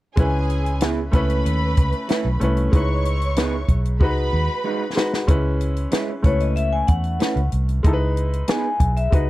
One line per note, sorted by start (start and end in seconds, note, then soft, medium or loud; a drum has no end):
0.16 1.09 C#2 medium
0.16 1.12 G#3 medium
0.16 1.11 C#4 medium
0.16 1.12 E4 medium
0.16 0.80 G#4 medium
0.16 1.13 B4 medium
0.16 0.80 G#5 medium
0.16 kick loud
0.16 closed hi-hat medium
0.50 closed hi-hat medium
0.66 closed hi-hat soft
0.80 0.98 B3 medium
0.80 0.99 E4 medium
0.80 0.99 G#4 medium
0.80 0.99 B4 medium
0.80 snare medium
0.80 closed hi-hat medium
1.12 1.42 C#2 medium
1.12 2.18 A3 medium
1.12 2.19 C#4 medium
1.12 2.19 E4 medium
1.12 2.39 B4 medium
1.12 2.20 B4 medium
1.12 2.39 B5 medium
1.12 kick medium
1.12 closed hi-hat medium
1.30 closed hi-hat soft
1.46 1.74 D#2 medium
1.46 closed hi-hat medium
1.77 1.92 C#2 medium
1.77 kick medium
1.77 closed hi-hat medium
1.92 closed hi-hat soft
2.08 2.26 A3 medium
2.08 2.26 C#4 medium
2.08 2.26 E4 medium
2.08 2.26 B4 medium
2.08 snare medium
2.08 closed hi-hat medium
2.25 2.39 B1 medium
2.40 2.70 C2 medium
2.40 2.67 A3 medium
2.40 2.67 C#4 medium
2.40 2.68 E4 medium
2.40 2.69 B4 medium
2.40 closed hi-hat medium
2.57 closed hi-hat soft
2.72 3.65 C#2 medium
2.72 3.78 G#3 medium
2.72 3.79 D#4 medium
2.72 3.79 E4 medium
2.72 3.80 B4 medium
2.72 3.67 C#5 medium
2.72 3.67 C#6 medium
2.72 kick loud
2.72 closed hi-hat medium
3.05 closed hi-hat medium
3.21 closed hi-hat soft
3.36 3.54 B3 medium
3.36 3.54 D#4 medium
3.36 3.54 G#4 medium
3.36 3.55 B4 medium
3.36 snare medium
3.36 closed hi-hat medium
3.68 4.01 B1 medium
3.68 kick medium
3.68 closed hi-hat medium
3.85 closed hi-hat soft
4.00 4.29 C#2 medium
4.00 4.80 G#3 medium
4.00 4.80 D#4 medium
4.00 4.81 F#4 medium
4.00 4.95 B4 medium
4.00 4.81 B4 medium
4.00 4.95 B5 medium
4.00 kick medium
4.33 4.47 D#2 medium
4.64 4.82 G#3 medium
4.64 4.82 D#4 medium
4.64 4.82 F#4 medium
4.64 4.82 B4 medium
4.95 5.22 G#3 medium
4.95 5.23 D#4 medium
4.95 5.24 F#4 medium
4.95 5.24 B4 medium
4.95 snare medium
5.13 snare medium
5.27 5.86 C#2 medium
5.27 6.24 G#3 medium
5.27 6.22 C#4 medium
5.27 6.23 E4 medium
5.27 6.24 B4 medium
5.27 kick loud
5.27 closed hi-hat medium
5.61 closed hi-hat medium
5.76 closed hi-hat soft
5.91 6.09 G#3 medium
5.91 6.10 C#4 medium
5.91 6.10 E4 medium
5.91 6.10 B4 medium
5.91 snare medium
5.91 closed hi-hat medium
6.22 6.82 C#2 medium
6.22 7.29 A3 medium
6.22 7.30 C#4 medium
6.22 7.31 E4 medium
6.22 7.31 B4 medium
6.22 6.40 C#5 medium
6.22 kick medium
6.22 closed hi-hat medium
6.40 6.56 D#5 medium
6.40 closed hi-hat medium
6.56 6.71 E5 medium
6.56 closed hi-hat medium
6.73 6.80 G#5 medium
6.87 7.17 E2 medium
6.87 7.48 F#5 medium
6.87 kick medium
6.87 closed hi-hat medium
7.04 closed hi-hat soft
7.20 7.37 A3 medium
7.20 7.38 C#4 medium
7.20 7.38 E4 medium
7.20 7.38 B4 medium
7.20 snare loud
7.20 closed hi-hat medium
7.36 7.50 C#2 medium
7.36 closed hi-hat soft
7.52 7.81 C2 medium
7.52 closed hi-hat medium
7.69 closed hi-hat soft
7.83 8.42 C#2 medium
7.83 8.90 G#3 medium
7.83 8.90 D#4 medium
7.83 8.91 E4 medium
7.83 7.92 A4 medium
7.83 kick loud
7.83 closed hi-hat medium
7.93 8.95 B4 medium
8.17 closed hi-hat medium
8.33 closed hi-hat soft
8.48 8.65 B3 medium
8.48 8.66 D#4 medium
8.48 8.66 G#4 medium
8.48 8.66 B4 medium
8.48 8.93 G#5 medium
8.48 snare medium
8.48 closed hi-hat medium
8.80 9.09 B1 medium
8.80 kick medium
8.80 closed hi-hat medium
8.97 9.11 E5 medium
8.97 closed hi-hat soft
9.10 9.30 C#2 medium
9.10 9.30 G#3 medium
9.10 9.30 D#4 medium
9.10 9.30 F#4 medium
9.10 9.30 B4 medium
9.10 9.30 D#5 medium
9.10 kick medium
9.10 closed hi-hat medium